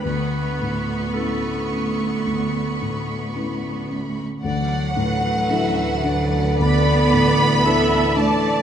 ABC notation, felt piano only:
X:1
M:4/4
L:1/8
Q:1/4=55
K:D
V:1 name="Felt piano"
D,, A,, [CEB] C D,, A,, [CEB] C | D,, A,, [DEA] D D,, A,, [DEA] D |]